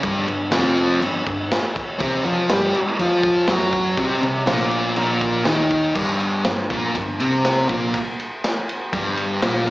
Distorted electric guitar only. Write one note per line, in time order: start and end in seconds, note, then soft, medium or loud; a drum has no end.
0.03 0.26 G2 loud
0.03 0.27 G3 loud
0.27 0.47 G2 medium
0.51 1.00 F2 loud
0.51 1.01 F3 loud
1.01 1.21 G2 medium
1.26 1.46 G2 medium
1.99 2.23 C3 loud
1.99 2.24 C4 loud
2.25 2.49 F3 medium
2.25 2.50 F4 loud
2.51 2.74 G3 loud
2.51 2.74 G4 loud
2.75 muted distorted electric guitar stroke medium
3.00 3.48 F3 medium
3.00 3.48 F4 medium
3.48 3.97 F#3 medium
3.48 3.97 F#4 loud
3.98 4.20 C3 loud
3.98 4.22 C4 loud
4.21 4.42 C3 medium
4.46 4.95 A#2 medium
4.46 4.96 A#3 loud
4.97 5.44 A#2 medium
4.97 5.46 A#3 loud
5.45 5.94 D#3 medium
5.45 5.95 D#4 medium
5.94 6.44 G2 medium
5.94 6.44 G3 loud
6.46 6.65 G2 medium
6.70 6.94 A#2 medium
6.70 6.95 A#3 loud
6.96 7.15 G2 medium
7.19 7.68 C3 medium
7.19 7.69 C4 medium
7.68 7.93 A#2 loud
7.68 7.93 A#3 loud
8.93 9.42 G2 loud
8.93 9.42 G3 loud
9.42 9.66 A#2 medium
9.42 9.67 A#3 medium
9.66 9.70 G2 medium